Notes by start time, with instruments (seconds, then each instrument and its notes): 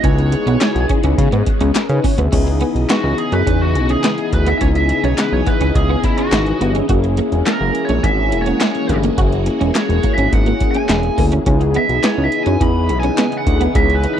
Already playing: string machine F#4
0.03 analog synth bass C#2, string machine C#3 G#3 B3, analog polysynth B3 D#4 E4 G#4, clean electric guitar C#4, lead electric guitar C#5, kick, closed hi-hat
0.18 closed hi-hat
0.32 muted clean electric guitar stroke, closed hi-hat
0.47 analog synth bass B1, clean electric guitar B3, closed hi-hat
0.61 muted clean electric guitar stroke, snare, clap, closed hi-hat
0.75 analog synth bass B1, closed hi-hat
0.89 clean electric guitar C#4, kick, closed hi-hat
1.03 analog synth bass C#2, clean electric guitar C#4, closed hi-hat
1.18 analog synth bass C#3, kick, closed hi-hat
1.32 analog synth bass G#2, clean electric guitar B3, closed hi-hat
1.46 muted clean electric guitar stroke, kick, closed hi-hat
1.61 analog synth bass C#2, analog polysynth B3 G#4, clean electric guitar C#4, closed hi-hat
1.75 analog polysynth C#4 A#4, muted clean electric guitar stroke, snare, clap, closed hi-hat
1.89 analog synth bass C#3, analog polysynth D#4 B4, closed hi-hat
2.04 clean electric guitar C#4, analog polysynth E4 C#5, kick, open hi-hat
2.18 analog synth bass D2, clean electric guitar B3, analog polysynth G#4 E5, closed hi-hat
2.32 analog synth bass C#2, string machine C#3 E3 B3 D#5, analog polysynth B3 D#4 E4 G#4, clean electric guitar C#4, kick, closed hi-hat, crash
2.47 muted clean electric guitar stroke, closed hi-hat
2.61 clean electric guitar B3, closed hi-hat
2.75 analog synth bass B1, closed hi-hat
2.90 clean electric guitar B3, lead electric guitar F#4, snare, clap, closed hi-hat
3.04 analog synth bass C#2, muted clean electric guitar stroke
3.18 lead electric guitar G#4, closed hi-hat
3.32 analog synth bass F#2, clean electric guitar C#4, lead electric guitar B4, closed hi-hat
3.47 analog synth bass E2, clean electric guitar C#4, kick, closed hi-hat
3.61 lead electric guitar F#4
3.75 analog synth bass B1, muted clean electric guitar stroke, closed hi-hat
3.89 clean electric guitar C#4, lead electric guitar G#4, closed hi-hat
4.04 clean electric guitar B3, snare, clap, closed hi-hat
4.18 muted clean electric guitar stroke, closed hi-hat
4.33 analog synth bass D2, lead electric guitar B4, kick, closed hi-hat
4.46 clean electric guitar B3, lead electric guitar E5, closed hi-hat
4.58 analog synth bass C#2, string machine C#4, clean electric guitar C#4, lead electric guitar C#5 E5, kick, closed hi-hat
4.75 lead electric guitar E5, closed hi-hat
4.89 muted clean electric guitar stroke, closed hi-hat
5.04 analog synth bass B1, clean electric guitar C#4, lead electric guitar C#5, closed hi-hat
5.18 lead electric guitar B4, muted clean electric guitar stroke, snare, clap, closed hi-hat
5.32 analog synth bass B1, lead electric guitar C#5
5.46 clean electric guitar B3, lead electric guitar B4, kick, closed hi-hat
5.61 analog synth bass C#2, clean electric guitar C#4, closed hi-hat
5.75 analog synth bass C#2, lead electric guitar G#4, kick, closed hi-hat
5.89 clean electric guitar B3
6.04 lead electric guitar E4, muted clean electric guitar stroke, kick, closed hi-hat
6.18 clean electric guitar C#4, lead electric guitar F#4, closed hi-hat
6.32 analog synth bass G#1, muted clean electric guitar stroke, snare, clap, closed hi-hat
6.46 closed hi-hat
6.61 analog synth bass G1, clean electric guitar B3, closed hi-hat
6.75 clean electric guitar C#4, closed hi-hat
6.89 analog synth bass F#1, string machine G#3 A#3 F#4, analog polysynth A#3 C#4 E4 G#4, clean electric guitar F#4, kick, closed hi-hat
7.04 muted clean electric guitar stroke, closed hi-hat
7.17 clean electric guitar A#3, closed hi-hat
7.32 analog synth bass E1, closed hi-hat
7.46 clean electric guitar A#3, lead electric guitar A#4, snare, clap, closed hi-hat
7.61 analog synth bass F#1, muted clean electric guitar stroke
7.75 closed hi-hat
7.85 lead electric guitar C#5, closed hi-hat
7.89 analog synth bass A#1, clean electric guitar C#4
8.03 analog synth bass G#1, clean electric guitar C#4, lead electric guitar E5, kick, closed hi-hat
8.32 analog synth bass E1, muted clean electric guitar stroke, closed hi-hat
8.42 lead electric guitar C#5
8.46 clean electric guitar C#4, closed hi-hat
8.61 clean electric guitar A#3, snare, clap, closed hi-hat
8.75 muted clean electric guitar stroke, closed hi-hat
8.89 analog synth bass G1, kick, closed hi-hat
9.03 clean electric guitar A#3, closed hi-hat
9.18 analog synth bass F#1, clean electric guitar F#4, kick, closed hi-hat
9.32 closed hi-hat
9.46 muted clean electric guitar stroke, closed hi-hat
9.61 analog synth bass E1, clean electric guitar C#4, closed hi-hat
9.75 lead electric guitar C#5, muted clean electric guitar stroke, snare, clap, closed hi-hat
9.89 analog synth bass E1, closed hi-hat
10.03 clean electric guitar A#3, kick, closed hi-hat
10.14 analog synth bass G#1, lead electric guitar E5, closed hi-hat
10.18 clean electric guitar C#4
10.32 analog synth bass G#1, lead electric guitar F#5, kick, closed hi-hat
10.46 clean electric guitar A#3, closed hi-hat
10.60 muted clean electric guitar stroke, kick, closed hi-hat
10.71 lead electric guitar G#5, closed hi-hat
10.75 clean electric guitar C#4
10.89 analog synth bass E1, muted clean electric guitar stroke, snare, clap, closed hi-hat
11.03 closed hi-hat
11.18 analog synth bass D2, clean electric guitar A#3, kick, open hi-hat
11.32 clean electric guitar C#4, closed hi-hat
11.46 analog synth bass C#2, string machine C#3 E3 B3 D#5, analog polysynth B3 D#4 E4 G#4, clean electric guitar C#4, kick, closed hi-hat
11.61 muted clean electric guitar stroke, closed hi-hat
11.74 clean electric guitar B3, lead electric guitar E5, closed hi-hat
11.89 analog synth bass B1, closed hi-hat
12.03 clean electric guitar B3, lead electric guitar C#5, snare, clap, closed hi-hat
12.18 analog synth bass C#2, muted clean electric guitar stroke
12.24 lead electric guitar E5
12.32 closed hi-hat
12.43 analog synth bass F#2, clean electric guitar C#4, lead electric guitar G#5, closed hi-hat
12.61 analog synth bass E2, clean electric guitar C#4, lead electric guitar B5, kick, closed hi-hat
12.89 analog synth bass B1, muted clean electric guitar stroke, closed hi-hat
13.00 clean electric guitar C#4, lead electric guitar G#5, closed hi-hat
13.18 clean electric guitar B3, snare, clap, closed hi-hat
13.32 muted clean electric guitar stroke, closed hi-hat
13.38 lead electric guitar F#5
13.47 analog synth bass D2, kick, closed hi-hat
13.61 clean electric guitar B3, closed hi-hat
13.75 analog synth bass C#2, clean electric guitar C#4, string machine C#4, lead electric guitar E5, kick, closed hi-hat
13.90 closed hi-hat
13.95 lead electric guitar B4
14.04 muted clean electric guitar stroke, closed hi-hat
14.14 lead electric guitar B4